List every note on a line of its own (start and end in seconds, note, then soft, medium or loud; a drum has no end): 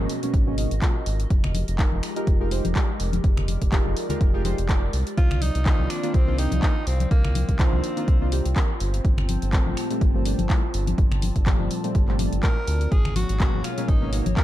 0.00 0.19 B2 medium
0.00 0.20 F#3 medium
0.00 0.20 G#3 medium
0.00 0.20 A#3 medium
0.00 0.20 C#4 medium
0.00 1.27 F#4 medium
0.00 1.27 A#4 medium
0.00 3.20 D#5 medium
0.10 open hi-hat medium
0.22 0.44 B2 medium
0.22 0.44 F#3 medium
0.22 0.44 G#3 medium
0.22 0.44 A#3 medium
0.22 0.44 C#4 medium
0.22 closed hi-hat medium
0.34 0.67 G#1 medium
0.34 kick loud
0.34 closed hi-hat medium
0.47 0.55 B2 medium
0.47 0.55 F#3 medium
0.47 0.55 G#3 medium
0.47 0.55 A#3 medium
0.47 0.56 C#4 loud
0.57 0.70 B2 medium
0.57 0.70 F#3 medium
0.57 0.71 G#3 medium
0.57 0.71 A#3 medium
0.57 0.71 D#4 medium
0.57 open hi-hat loud
0.71 0.80 G#1 medium
0.71 closed hi-hat medium
0.82 0.94 B2 medium
0.82 0.95 F#3 medium
0.82 0.95 G#3 medium
0.82 0.95 A#3 medium
0.82 0.95 F4 medium
0.82 kick loud
0.82 clap loud
0.82 closed hi-hat medium
1.06 1.26 G#1 medium
1.06 open hi-hat medium
1.20 closed hi-hat medium
1.30 1.64 F1 loud
1.30 5.14 G#3 medium
1.30 5.14 G4 medium
1.30 5.14 A#4 medium
1.30 kick loud
1.30 closed hi-hat medium
1.44 finger snap medium
1.44 low conga medium
1.54 open hi-hat loud
1.54 high conga medium
1.68 1.87 F1 medium
1.68 closed hi-hat medium
1.78 2.13 G#3 medium
1.78 2.13 D#4 medium
1.78 2.13 F4 medium
1.78 2.13 G4 medium
1.78 2.13 A#4 medium
1.78 kick loud
1.78 clap loud
1.78 closed hi-hat medium
1.92 2.01 F1 medium
1.92 high conga medium
2.03 finger snap medium
2.03 open hi-hat medium
2.16 2.37 G#3 medium
2.16 2.37 D#4 medium
2.16 2.37 F4 medium
2.16 2.38 G4 medium
2.16 2.38 A#4 medium
2.16 closed hi-hat medium
2.27 2.61 F1 loud
2.27 kick loud
2.27 closed hi-hat medium
2.40 2.49 G#3 medium
2.40 2.49 D#4 medium
2.40 2.49 F4 medium
2.40 2.49 G4 medium
2.40 2.49 A#4 loud
2.51 2.64 G#3 medium
2.51 2.64 D#4 medium
2.51 2.64 F4 medium
2.51 2.64 G4 medium
2.51 2.64 C5 medium
2.51 open hi-hat loud
2.65 2.73 F1 medium
2.65 closed hi-hat medium
2.65 high conga medium
2.75 2.88 G#3 medium
2.75 2.88 D#4 medium
2.75 2.88 F4 medium
2.75 2.88 G4 medium
2.75 2.89 D5 medium
2.75 kick loud
2.75 clap loud
2.75 closed hi-hat medium
3.00 3.20 F1 medium
3.00 open hi-hat medium
3.13 closed hi-hat medium
3.13 high conga medium
3.24 3.57 F1 loud
3.24 7.07 D5 medium
3.24 kick loud
3.24 closed hi-hat medium
3.37 finger snap medium
3.37 low conga medium
3.48 open hi-hat loud
3.48 high conga medium
3.62 3.80 F1 medium
3.62 kick medium
3.62 closed hi-hat medium
3.72 4.07 G#3 medium
3.72 4.07 D#4 medium
3.72 4.07 F4 medium
3.72 4.07 G4 medium
3.72 4.07 A#4 medium
3.72 kick loud
3.72 clap loud
3.72 closed hi-hat medium
3.86 3.94 F1 medium
3.86 high conga medium
3.97 open hi-hat medium
4.09 4.31 G#3 medium
4.09 4.31 D#4 medium
4.09 4.31 F4 medium
4.09 4.31 G4 medium
4.09 4.31 A#4 medium
4.09 closed hi-hat medium
4.09 low conga medium
4.21 4.54 F1 loud
4.21 kick loud
4.21 closed hi-hat medium
4.34 4.42 G#3 medium
4.34 4.42 D#4 medium
4.34 4.42 F4 medium
4.34 4.42 G4 medium
4.34 4.43 A#4 medium
4.44 4.57 G#3 medium
4.44 4.58 D#4 medium
4.44 4.58 F4 medium
4.44 4.58 G4 medium
4.44 4.58 C5 medium
4.44 open hi-hat loud
4.44 high conga medium
4.58 4.90 F1 medium
4.58 closed hi-hat medium
4.69 4.82 G#3 medium
4.69 4.82 D#4 medium
4.69 4.82 F4 medium
4.69 4.82 G4 medium
4.69 4.82 D5 medium
4.69 kick loud
4.69 clap loud
4.69 closed hi-hat medium
4.93 5.04 C2 medium
4.93 open hi-hat medium
5.07 closed hi-hat medium
5.18 5.51 C2 loud
5.18 12.88 C4 medium
5.18 5.43 F4 loud
5.18 12.88 F4 medium
5.18 8.77 F5 medium
5.18 kick loud
5.18 closed hi-hat medium
5.31 finger snap medium
5.31 low conga medium
5.42 5.92 D#4 loud
5.42 open hi-hat loud
5.42 high conga medium
5.55 5.74 C2 medium
5.55 closed hi-hat medium
5.65 6.00 D#3 medium
5.65 6.00 A#3 medium
5.65 6.00 C4 medium
5.65 6.00 D4 medium
5.65 6.01 F4 medium
5.65 kick loud
5.65 clap loud
5.65 closed hi-hat medium
5.79 5.88 C2 medium
5.79 high conga medium
5.90 6.16 D4 loud
5.90 finger snap medium
5.90 open hi-hat medium
6.03 6.24 D#3 medium
6.03 6.24 A#3 medium
6.03 6.25 C4 medium
6.03 6.25 D4 medium
6.03 6.25 F4 medium
6.03 closed hi-hat medium
6.14 6.48 C2 medium
6.14 6.40 C4 loud
6.14 kick loud
6.14 closed hi-hat medium
6.27 6.36 D#3 medium
6.27 6.36 A#3 medium
6.27 6.36 C4 medium
6.27 6.36 D4 medium
6.27 6.36 F4 loud
6.38 6.51 D#3 medium
6.38 6.51 A#3 medium
6.38 6.51 C4 medium
6.38 6.51 D4 medium
6.38 6.88 D#4 loud
6.38 6.51 G4 medium
6.38 open hi-hat loud
6.52 6.61 C2 medium
6.52 closed hi-hat medium
6.52 high conga loud
6.62 6.75 D#3 medium
6.62 6.75 A#3 medium
6.62 6.75 C4 medium
6.62 6.75 D4 medium
6.62 6.76 A#4 medium
6.62 kick loud
6.62 clap loud
6.62 closed hi-hat medium
6.87 7.07 C2 medium
6.87 7.11 C4 medium
6.87 open hi-hat medium
7.00 closed hi-hat medium
7.00 high conga medium
7.11 7.44 C2 loud
7.11 7.56 A#3 loud
7.11 8.79 C5 medium
7.11 kick loud
7.11 closed hi-hat medium
7.25 finger snap medium
7.25 low conga medium
7.35 open hi-hat loud
7.35 high conga medium
7.49 7.68 C2 medium
7.49 kick medium
7.49 closed hi-hat medium
7.59 7.94 D#3 medium
7.59 7.94 A#3 medium
7.59 7.94 C4 medium
7.59 8.52 C4 medium
7.59 7.94 D4 medium
7.59 7.94 F4 medium
7.59 kick loud
7.59 clap loud
7.59 closed hi-hat medium
7.73 7.82 C2 medium
7.73 high conga medium
7.84 open hi-hat loud
7.97 8.18 D#3 medium
7.97 8.18 A#3 medium
7.97 8.18 C4 medium
7.97 8.18 D4 medium
7.97 8.18 F4 medium
7.97 closed hi-hat medium
8.08 8.41 C2 loud
8.08 kick loud
8.08 closed hi-hat medium
8.21 8.29 D#3 medium
8.21 8.29 A#3 medium
8.21 8.29 C4 medium
8.21 8.30 D4 medium
8.21 8.30 F4 loud
8.32 8.44 D#3 medium
8.32 8.45 A#3 medium
8.32 8.45 C4 medium
8.32 8.45 D4 medium
8.32 8.45 G4 medium
8.32 open hi-hat loud
8.45 8.54 C2 medium
8.45 closed hi-hat medium
8.56 8.69 D#3 medium
8.56 8.69 A#3 medium
8.56 8.69 C4 medium
8.56 8.69 D4 medium
8.56 8.69 A#4 medium
8.56 kick loud
8.56 clap loud
8.56 closed hi-hat medium
8.80 9.00 G1 loud
8.80 10.72 C5 medium
8.80 12.88 A5 medium
8.80 open hi-hat loud
8.94 closed hi-hat medium
9.05 9.38 G1 loud
9.05 kick loud
9.05 closed hi-hat medium
9.18 finger snap medium
9.18 low conga medium
9.29 open hi-hat loud
9.29 high conga medium
9.42 9.61 G1 medium
9.42 closed hi-hat medium
9.52 9.87 A#2 medium
9.52 9.87 F3 medium
9.52 9.87 G3 medium
9.52 9.88 A3 medium
9.52 9.88 C4 medium
9.52 kick loud
9.52 clap loud
9.52 closed hi-hat medium
9.66 9.75 G1 medium
9.66 high conga medium
9.77 finger snap medium
9.77 open hi-hat loud
9.90 10.11 A#2 medium
9.90 10.11 F3 medium
9.90 10.12 G3 medium
9.90 10.12 A3 medium
9.90 10.12 C4 medium
9.90 closed hi-hat medium
10.01 10.35 G1 medium
10.01 kick loud
10.01 closed hi-hat medium
10.14 10.23 A#2 medium
10.14 10.23 F3 medium
10.14 10.23 G3 medium
10.14 10.23 A3 medium
10.14 10.23 C4 loud
10.25 10.38 A#2 medium
10.25 10.38 F3 medium
10.25 10.38 G3 medium
10.25 10.38 A3 medium
10.25 10.38 D4 medium
10.25 open hi-hat loud
10.38 10.48 G1 medium
10.38 closed hi-hat medium
10.38 high conga loud
10.49 10.62 A#2 medium
10.49 10.62 F3 medium
10.49 10.62 G3 medium
10.49 10.63 A3 medium
10.49 10.63 E4 medium
10.49 kick loud
10.49 clap loud
10.49 closed hi-hat medium
10.74 10.94 G1 medium
10.74 12.90 D5 medium
10.74 open hi-hat loud
10.87 closed hi-hat medium
10.87 high conga loud
10.98 11.31 G1 loud
10.98 kick loud
10.98 closed hi-hat medium
11.11 finger snap medium
11.11 low conga medium
11.22 open hi-hat loud
11.22 high conga medium
11.36 11.55 G1 medium
11.36 kick medium
11.36 closed hi-hat medium
11.46 11.81 A#2 medium
11.46 11.81 F3 medium
11.46 11.81 G3 medium
11.46 11.81 A3 medium
11.46 11.81 C4 medium
11.46 kick loud
11.46 clap loud
11.46 closed hi-hat medium
11.60 11.69 G1 medium
11.60 high conga medium
11.71 open hi-hat loud
11.84 12.05 A#2 medium
11.84 12.05 F3 medium
11.84 12.05 G3 medium
11.84 12.05 A3 medium
11.84 12.05 C4 medium
11.84 closed hi-hat medium
11.95 12.28 G1 medium
11.95 kick loud
11.95 closed hi-hat medium
12.08 12.16 A#2 medium
12.08 12.16 F3 medium
12.08 12.17 G3 medium
12.08 12.17 A3 medium
12.08 12.17 C4 loud
12.08 clap soft
12.19 12.32 A#2 medium
12.19 12.32 F3 medium
12.19 12.32 G3 medium
12.19 12.32 A3 medium
12.19 12.32 D4 medium
12.19 open hi-hat loud
12.19 high conga medium
12.33 12.41 G1 medium
12.33 closed hi-hat medium
12.43 12.56 A#2 medium
12.43 12.56 F3 medium
12.43 12.56 G3 medium
12.43 12.56 A3 medium
12.43 12.56 E4 medium
12.43 12.93 A#4 loud
12.43 kick loud
12.43 clap loud
12.43 closed hi-hat soft
12.67 12.87 D2 medium
12.67 open hi-hat loud
12.81 closed hi-hat medium
12.92 13.25 G#1 loud
12.92 14.44 A#3 medium
12.92 14.44 F#4 medium
12.92 13.15 G#4 loud
12.92 14.44 A#4 medium
12.92 14.44 C#5 medium
12.92 kick loud
12.92 closed hi-hat soft
13.05 finger snap medium
13.05 low conga medium
13.16 13.66 F#4 loud
13.16 open hi-hat loud
13.16 high conga loud
13.29 13.48 G#1 loud
13.29 closed hi-hat medium
13.40 13.74 B2 medium
13.40 13.74 F#3 medium
13.40 13.75 G#3 medium
13.40 13.75 A#3 medium
13.40 13.75 C#4 medium
13.40 kick loud
13.40 clap loud
13.40 closed hi-hat medium
13.54 13.62 G#1 medium
13.54 high conga medium
13.64 13.90 F4 medium
13.64 finger snap medium
13.64 open hi-hat loud
13.77 13.98 B2 medium
13.77 13.99 F#3 medium
13.77 13.99 G#3 medium
13.77 13.99 A#3 medium
13.77 13.99 C#4 medium
13.77 closed hi-hat medium
13.88 14.22 G#1 medium
13.88 14.13 D#4 medium
13.88 kick loud
13.88 closed hi-hat medium
14.01 14.10 B2 medium
14.01 14.10 F#3 medium
14.01 14.10 G#3 medium
14.01 14.10 A#3 medium
14.01 14.10 C#4 loud
14.12 14.25 B2 medium
14.12 14.25 F#3 medium
14.12 14.25 G#3 medium
14.12 14.25 A#3 medium
14.12 14.26 D#4 medium
14.12 open hi-hat loud
14.26 14.35 G#1 medium
14.26 closed hi-hat medium
14.26 high conga loud
14.36 14.44 B2 medium
14.36 14.44 F#3 medium
14.36 14.44 G#3 medium
14.36 14.44 A#3 medium
14.36 14.44 F4 medium
14.36 14.44 A#4 loud
14.36 kick loud
14.36 clap loud
14.36 closed hi-hat medium